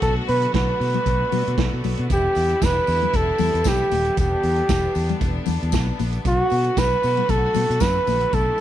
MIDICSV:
0, 0, Header, 1, 5, 480
1, 0, Start_track
1, 0, Key_signature, 1, "minor"
1, 0, Tempo, 519031
1, 22, Time_signature, 4, 2, 24, 8
1, 7958, End_track
2, 0, Start_track
2, 0, Title_t, "Flugelhorn"
2, 0, Program_c, 0, 56
2, 23, Note_on_c, 0, 69, 100
2, 131, Note_off_c, 0, 69, 0
2, 266, Note_on_c, 0, 71, 99
2, 487, Note_off_c, 0, 71, 0
2, 507, Note_on_c, 0, 71, 83
2, 1667, Note_off_c, 0, 71, 0
2, 1969, Note_on_c, 0, 67, 102
2, 2447, Note_on_c, 0, 71, 92
2, 2461, Note_off_c, 0, 67, 0
2, 2923, Note_on_c, 0, 69, 94
2, 2936, Note_off_c, 0, 71, 0
2, 3402, Note_on_c, 0, 67, 101
2, 3415, Note_off_c, 0, 69, 0
2, 3871, Note_off_c, 0, 67, 0
2, 3877, Note_on_c, 0, 67, 91
2, 4792, Note_off_c, 0, 67, 0
2, 5802, Note_on_c, 0, 66, 114
2, 6274, Note_on_c, 0, 71, 100
2, 6288, Note_off_c, 0, 66, 0
2, 6750, Note_on_c, 0, 69, 108
2, 6764, Note_off_c, 0, 71, 0
2, 7223, Note_on_c, 0, 71, 103
2, 7237, Note_off_c, 0, 69, 0
2, 7712, Note_on_c, 0, 69, 92
2, 7726, Note_off_c, 0, 71, 0
2, 7958, Note_off_c, 0, 69, 0
2, 7958, End_track
3, 0, Start_track
3, 0, Title_t, "String section"
3, 0, Program_c, 1, 48
3, 0, Note_on_c, 1, 50, 81
3, 0, Note_on_c, 1, 54, 75
3, 0, Note_on_c, 1, 57, 66
3, 0, Note_on_c, 1, 59, 73
3, 0, Note_on_c, 1, 66, 92
3, 1902, Note_off_c, 1, 54, 0
3, 1903, Note_off_c, 1, 66, 0
3, 1905, Note_off_c, 1, 57, 0
3, 1943, Note_on_c, 1, 64, 85
3, 1945, Note_on_c, 1, 55, 67
3, 1948, Note_on_c, 1, 52, 68
3, 3842, Note_off_c, 1, 64, 0
3, 3861, Note_on_c, 1, 62, 85
3, 5743, Note_off_c, 1, 50, 0
3, 5747, Note_off_c, 1, 55, 0
3, 5748, Note_off_c, 1, 52, 0
3, 5763, Note_off_c, 1, 62, 0
3, 5780, Note_on_c, 1, 54, 69
3, 5781, Note_on_c, 1, 66, 86
3, 5782, Note_on_c, 1, 57, 72
3, 5784, Note_on_c, 1, 50, 75
3, 7684, Note_off_c, 1, 66, 0
3, 7708, Note_on_c, 1, 64, 90
3, 7958, Note_off_c, 1, 50, 0
3, 7958, Note_off_c, 1, 54, 0
3, 7958, Note_off_c, 1, 57, 0
3, 7958, Note_off_c, 1, 59, 0
3, 7958, Note_off_c, 1, 64, 0
3, 7958, End_track
4, 0, Start_track
4, 0, Title_t, "Fingered electric bass"
4, 0, Program_c, 2, 33
4, 23, Note_on_c, 2, 35, 101
4, 180, Note_off_c, 2, 35, 0
4, 267, Note_on_c, 2, 47, 97
4, 422, Note_off_c, 2, 47, 0
4, 502, Note_on_c, 2, 35, 97
4, 659, Note_off_c, 2, 35, 0
4, 744, Note_on_c, 2, 47, 96
4, 900, Note_off_c, 2, 47, 0
4, 983, Note_on_c, 2, 35, 96
4, 1139, Note_off_c, 2, 35, 0
4, 1225, Note_on_c, 2, 47, 93
4, 1311, Note_off_c, 2, 47, 0
4, 1364, Note_on_c, 2, 47, 79
4, 1430, Note_off_c, 2, 47, 0
4, 1462, Note_on_c, 2, 35, 101
4, 1550, Note_off_c, 2, 35, 0
4, 1601, Note_on_c, 2, 47, 86
4, 1669, Note_off_c, 2, 47, 0
4, 1707, Note_on_c, 2, 35, 94
4, 1793, Note_off_c, 2, 35, 0
4, 1842, Note_on_c, 2, 47, 95
4, 1909, Note_off_c, 2, 47, 0
4, 1945, Note_on_c, 2, 28, 97
4, 2100, Note_off_c, 2, 28, 0
4, 2185, Note_on_c, 2, 40, 88
4, 2340, Note_off_c, 2, 40, 0
4, 2424, Note_on_c, 2, 28, 100
4, 2580, Note_off_c, 2, 28, 0
4, 2664, Note_on_c, 2, 40, 103
4, 2820, Note_off_c, 2, 40, 0
4, 2902, Note_on_c, 2, 28, 92
4, 3058, Note_off_c, 2, 28, 0
4, 3143, Note_on_c, 2, 40, 99
4, 3230, Note_off_c, 2, 40, 0
4, 3275, Note_on_c, 2, 40, 89
4, 3344, Note_off_c, 2, 40, 0
4, 3381, Note_on_c, 2, 35, 84
4, 3538, Note_off_c, 2, 35, 0
4, 3623, Note_on_c, 2, 27, 95
4, 3779, Note_off_c, 2, 27, 0
4, 3863, Note_on_c, 2, 28, 102
4, 4019, Note_off_c, 2, 28, 0
4, 4101, Note_on_c, 2, 40, 94
4, 4258, Note_off_c, 2, 40, 0
4, 4342, Note_on_c, 2, 28, 106
4, 4498, Note_off_c, 2, 28, 0
4, 4583, Note_on_c, 2, 40, 98
4, 4739, Note_off_c, 2, 40, 0
4, 4820, Note_on_c, 2, 28, 82
4, 4977, Note_off_c, 2, 28, 0
4, 5066, Note_on_c, 2, 40, 86
4, 5152, Note_off_c, 2, 40, 0
4, 5202, Note_on_c, 2, 40, 82
4, 5302, Note_on_c, 2, 35, 93
4, 5315, Note_off_c, 2, 40, 0
4, 5458, Note_off_c, 2, 35, 0
4, 5545, Note_on_c, 2, 34, 90
4, 5701, Note_off_c, 2, 34, 0
4, 5783, Note_on_c, 2, 35, 107
4, 5940, Note_off_c, 2, 35, 0
4, 6025, Note_on_c, 2, 47, 92
4, 6181, Note_off_c, 2, 47, 0
4, 6264, Note_on_c, 2, 35, 106
4, 6420, Note_off_c, 2, 35, 0
4, 6509, Note_on_c, 2, 47, 94
4, 6664, Note_off_c, 2, 47, 0
4, 6745, Note_on_c, 2, 35, 84
4, 6901, Note_off_c, 2, 35, 0
4, 6989, Note_on_c, 2, 47, 85
4, 7075, Note_off_c, 2, 47, 0
4, 7120, Note_on_c, 2, 47, 84
4, 7188, Note_off_c, 2, 47, 0
4, 7223, Note_on_c, 2, 42, 92
4, 7380, Note_off_c, 2, 42, 0
4, 7467, Note_on_c, 2, 34, 95
4, 7623, Note_off_c, 2, 34, 0
4, 7706, Note_on_c, 2, 35, 103
4, 7862, Note_off_c, 2, 35, 0
4, 7958, End_track
5, 0, Start_track
5, 0, Title_t, "Drums"
5, 16, Note_on_c, 9, 42, 68
5, 20, Note_on_c, 9, 36, 107
5, 109, Note_off_c, 9, 42, 0
5, 112, Note_off_c, 9, 36, 0
5, 262, Note_on_c, 9, 46, 58
5, 355, Note_off_c, 9, 46, 0
5, 385, Note_on_c, 9, 42, 47
5, 478, Note_off_c, 9, 42, 0
5, 500, Note_on_c, 9, 36, 109
5, 502, Note_on_c, 9, 42, 74
5, 507, Note_on_c, 9, 63, 69
5, 508, Note_on_c, 9, 38, 120
5, 592, Note_off_c, 9, 36, 0
5, 594, Note_off_c, 9, 42, 0
5, 600, Note_off_c, 9, 38, 0
5, 600, Note_off_c, 9, 63, 0
5, 751, Note_on_c, 9, 46, 71
5, 843, Note_off_c, 9, 46, 0
5, 870, Note_on_c, 9, 42, 48
5, 875, Note_on_c, 9, 64, 71
5, 963, Note_off_c, 9, 42, 0
5, 967, Note_off_c, 9, 64, 0
5, 980, Note_on_c, 9, 36, 93
5, 981, Note_on_c, 9, 42, 72
5, 990, Note_on_c, 9, 62, 56
5, 1073, Note_off_c, 9, 36, 0
5, 1073, Note_off_c, 9, 42, 0
5, 1082, Note_off_c, 9, 62, 0
5, 1220, Note_on_c, 9, 46, 62
5, 1224, Note_on_c, 9, 62, 61
5, 1224, Note_on_c, 9, 64, 79
5, 1312, Note_off_c, 9, 46, 0
5, 1317, Note_off_c, 9, 62, 0
5, 1317, Note_off_c, 9, 64, 0
5, 1364, Note_on_c, 9, 42, 48
5, 1457, Note_off_c, 9, 42, 0
5, 1459, Note_on_c, 9, 36, 122
5, 1461, Note_on_c, 9, 42, 70
5, 1464, Note_on_c, 9, 63, 67
5, 1467, Note_on_c, 9, 38, 119
5, 1552, Note_off_c, 9, 36, 0
5, 1554, Note_off_c, 9, 42, 0
5, 1557, Note_off_c, 9, 63, 0
5, 1560, Note_off_c, 9, 38, 0
5, 1700, Note_on_c, 9, 46, 63
5, 1710, Note_on_c, 9, 63, 65
5, 1793, Note_off_c, 9, 46, 0
5, 1802, Note_off_c, 9, 63, 0
5, 1825, Note_on_c, 9, 42, 51
5, 1918, Note_off_c, 9, 42, 0
5, 1941, Note_on_c, 9, 42, 64
5, 1942, Note_on_c, 9, 36, 101
5, 1942, Note_on_c, 9, 54, 53
5, 1946, Note_on_c, 9, 62, 38
5, 2033, Note_off_c, 9, 42, 0
5, 2034, Note_off_c, 9, 36, 0
5, 2034, Note_off_c, 9, 54, 0
5, 2038, Note_off_c, 9, 62, 0
5, 2172, Note_on_c, 9, 54, 32
5, 2185, Note_on_c, 9, 46, 64
5, 2265, Note_off_c, 9, 54, 0
5, 2278, Note_off_c, 9, 46, 0
5, 2305, Note_on_c, 9, 42, 44
5, 2398, Note_off_c, 9, 42, 0
5, 2421, Note_on_c, 9, 36, 115
5, 2423, Note_on_c, 9, 54, 90
5, 2426, Note_on_c, 9, 42, 66
5, 2432, Note_on_c, 9, 38, 115
5, 2435, Note_on_c, 9, 63, 71
5, 2514, Note_off_c, 9, 36, 0
5, 2515, Note_off_c, 9, 54, 0
5, 2518, Note_off_c, 9, 42, 0
5, 2524, Note_off_c, 9, 38, 0
5, 2528, Note_off_c, 9, 63, 0
5, 2656, Note_on_c, 9, 54, 47
5, 2667, Note_on_c, 9, 46, 75
5, 2749, Note_off_c, 9, 54, 0
5, 2760, Note_off_c, 9, 46, 0
5, 2790, Note_on_c, 9, 42, 45
5, 2799, Note_on_c, 9, 64, 71
5, 2882, Note_off_c, 9, 42, 0
5, 2892, Note_off_c, 9, 64, 0
5, 2900, Note_on_c, 9, 36, 103
5, 2900, Note_on_c, 9, 54, 34
5, 2901, Note_on_c, 9, 42, 75
5, 2907, Note_on_c, 9, 62, 56
5, 2993, Note_off_c, 9, 36, 0
5, 2993, Note_off_c, 9, 42, 0
5, 2993, Note_off_c, 9, 54, 0
5, 2999, Note_off_c, 9, 62, 0
5, 3129, Note_on_c, 9, 54, 52
5, 3137, Note_on_c, 9, 62, 61
5, 3137, Note_on_c, 9, 64, 78
5, 3143, Note_on_c, 9, 46, 64
5, 3222, Note_off_c, 9, 54, 0
5, 3230, Note_off_c, 9, 62, 0
5, 3230, Note_off_c, 9, 64, 0
5, 3236, Note_off_c, 9, 46, 0
5, 3283, Note_on_c, 9, 42, 50
5, 3369, Note_on_c, 9, 54, 105
5, 3375, Note_off_c, 9, 42, 0
5, 3379, Note_on_c, 9, 36, 127
5, 3383, Note_on_c, 9, 63, 72
5, 3384, Note_on_c, 9, 42, 73
5, 3390, Note_on_c, 9, 38, 118
5, 3462, Note_off_c, 9, 54, 0
5, 3472, Note_off_c, 9, 36, 0
5, 3475, Note_off_c, 9, 63, 0
5, 3476, Note_off_c, 9, 42, 0
5, 3482, Note_off_c, 9, 38, 0
5, 3619, Note_on_c, 9, 46, 66
5, 3619, Note_on_c, 9, 54, 52
5, 3626, Note_on_c, 9, 63, 62
5, 3712, Note_off_c, 9, 46, 0
5, 3712, Note_off_c, 9, 54, 0
5, 3718, Note_off_c, 9, 63, 0
5, 3743, Note_on_c, 9, 42, 54
5, 3835, Note_off_c, 9, 42, 0
5, 3858, Note_on_c, 9, 42, 65
5, 3859, Note_on_c, 9, 54, 50
5, 3860, Note_on_c, 9, 36, 102
5, 3950, Note_off_c, 9, 42, 0
5, 3952, Note_off_c, 9, 36, 0
5, 3952, Note_off_c, 9, 54, 0
5, 4098, Note_on_c, 9, 46, 55
5, 4191, Note_off_c, 9, 46, 0
5, 4219, Note_on_c, 9, 42, 45
5, 4311, Note_off_c, 9, 42, 0
5, 4337, Note_on_c, 9, 42, 67
5, 4337, Note_on_c, 9, 54, 95
5, 4338, Note_on_c, 9, 36, 127
5, 4343, Note_on_c, 9, 38, 109
5, 4346, Note_on_c, 9, 63, 76
5, 4429, Note_off_c, 9, 42, 0
5, 4430, Note_off_c, 9, 54, 0
5, 4431, Note_off_c, 9, 36, 0
5, 4435, Note_off_c, 9, 38, 0
5, 4438, Note_off_c, 9, 63, 0
5, 4577, Note_on_c, 9, 54, 49
5, 4586, Note_on_c, 9, 46, 80
5, 4669, Note_off_c, 9, 54, 0
5, 4678, Note_off_c, 9, 46, 0
5, 4709, Note_on_c, 9, 42, 52
5, 4716, Note_on_c, 9, 64, 74
5, 4801, Note_off_c, 9, 42, 0
5, 4808, Note_off_c, 9, 64, 0
5, 4818, Note_on_c, 9, 54, 39
5, 4819, Note_on_c, 9, 36, 102
5, 4819, Note_on_c, 9, 42, 76
5, 4821, Note_on_c, 9, 62, 59
5, 4911, Note_off_c, 9, 36, 0
5, 4911, Note_off_c, 9, 54, 0
5, 4912, Note_off_c, 9, 42, 0
5, 4913, Note_off_c, 9, 62, 0
5, 5046, Note_on_c, 9, 54, 54
5, 5054, Note_on_c, 9, 62, 68
5, 5054, Note_on_c, 9, 64, 85
5, 5061, Note_on_c, 9, 46, 67
5, 5138, Note_off_c, 9, 54, 0
5, 5146, Note_off_c, 9, 62, 0
5, 5146, Note_off_c, 9, 64, 0
5, 5153, Note_off_c, 9, 46, 0
5, 5204, Note_on_c, 9, 42, 50
5, 5291, Note_on_c, 9, 54, 100
5, 5297, Note_off_c, 9, 42, 0
5, 5299, Note_on_c, 9, 36, 127
5, 5299, Note_on_c, 9, 63, 74
5, 5302, Note_on_c, 9, 42, 78
5, 5308, Note_on_c, 9, 38, 123
5, 5383, Note_off_c, 9, 54, 0
5, 5391, Note_off_c, 9, 36, 0
5, 5392, Note_off_c, 9, 63, 0
5, 5395, Note_off_c, 9, 42, 0
5, 5401, Note_off_c, 9, 38, 0
5, 5541, Note_on_c, 9, 46, 62
5, 5546, Note_on_c, 9, 54, 47
5, 5547, Note_on_c, 9, 63, 66
5, 5633, Note_off_c, 9, 46, 0
5, 5638, Note_off_c, 9, 54, 0
5, 5640, Note_off_c, 9, 63, 0
5, 5664, Note_on_c, 9, 42, 51
5, 5757, Note_off_c, 9, 42, 0
5, 5778, Note_on_c, 9, 42, 60
5, 5780, Note_on_c, 9, 36, 109
5, 5784, Note_on_c, 9, 54, 50
5, 5785, Note_on_c, 9, 62, 38
5, 5870, Note_off_c, 9, 42, 0
5, 5873, Note_off_c, 9, 36, 0
5, 5876, Note_off_c, 9, 54, 0
5, 5878, Note_off_c, 9, 62, 0
5, 6009, Note_on_c, 9, 54, 32
5, 6024, Note_on_c, 9, 46, 61
5, 6102, Note_off_c, 9, 54, 0
5, 6116, Note_off_c, 9, 46, 0
5, 6143, Note_on_c, 9, 42, 46
5, 6236, Note_off_c, 9, 42, 0
5, 6261, Note_on_c, 9, 36, 123
5, 6262, Note_on_c, 9, 42, 76
5, 6266, Note_on_c, 9, 54, 92
5, 6268, Note_on_c, 9, 38, 117
5, 6274, Note_on_c, 9, 63, 73
5, 6354, Note_off_c, 9, 36, 0
5, 6355, Note_off_c, 9, 42, 0
5, 6358, Note_off_c, 9, 54, 0
5, 6361, Note_off_c, 9, 38, 0
5, 6366, Note_off_c, 9, 63, 0
5, 6504, Note_on_c, 9, 54, 49
5, 6508, Note_on_c, 9, 46, 72
5, 6596, Note_off_c, 9, 54, 0
5, 6600, Note_off_c, 9, 46, 0
5, 6631, Note_on_c, 9, 42, 51
5, 6638, Note_on_c, 9, 64, 69
5, 6723, Note_off_c, 9, 42, 0
5, 6731, Note_off_c, 9, 64, 0
5, 6741, Note_on_c, 9, 42, 68
5, 6742, Note_on_c, 9, 36, 114
5, 6746, Note_on_c, 9, 54, 34
5, 6749, Note_on_c, 9, 62, 58
5, 6834, Note_off_c, 9, 36, 0
5, 6834, Note_off_c, 9, 42, 0
5, 6838, Note_off_c, 9, 54, 0
5, 6842, Note_off_c, 9, 62, 0
5, 6976, Note_on_c, 9, 54, 59
5, 6979, Note_on_c, 9, 62, 60
5, 6979, Note_on_c, 9, 64, 80
5, 6984, Note_on_c, 9, 46, 69
5, 7068, Note_off_c, 9, 54, 0
5, 7071, Note_off_c, 9, 62, 0
5, 7071, Note_off_c, 9, 64, 0
5, 7077, Note_off_c, 9, 46, 0
5, 7126, Note_on_c, 9, 42, 48
5, 7216, Note_on_c, 9, 54, 104
5, 7219, Note_off_c, 9, 42, 0
5, 7221, Note_on_c, 9, 63, 76
5, 7222, Note_on_c, 9, 36, 124
5, 7224, Note_on_c, 9, 42, 68
5, 7230, Note_on_c, 9, 38, 115
5, 7308, Note_off_c, 9, 54, 0
5, 7314, Note_off_c, 9, 63, 0
5, 7315, Note_off_c, 9, 36, 0
5, 7316, Note_off_c, 9, 42, 0
5, 7322, Note_off_c, 9, 38, 0
5, 7462, Note_on_c, 9, 46, 67
5, 7466, Note_on_c, 9, 54, 53
5, 7473, Note_on_c, 9, 63, 66
5, 7554, Note_off_c, 9, 46, 0
5, 7559, Note_off_c, 9, 54, 0
5, 7565, Note_off_c, 9, 63, 0
5, 7586, Note_on_c, 9, 42, 50
5, 7679, Note_off_c, 9, 42, 0
5, 7701, Note_on_c, 9, 42, 55
5, 7702, Note_on_c, 9, 54, 48
5, 7704, Note_on_c, 9, 36, 106
5, 7708, Note_on_c, 9, 62, 42
5, 7793, Note_off_c, 9, 42, 0
5, 7795, Note_off_c, 9, 54, 0
5, 7796, Note_off_c, 9, 36, 0
5, 7800, Note_off_c, 9, 62, 0
5, 7958, End_track
0, 0, End_of_file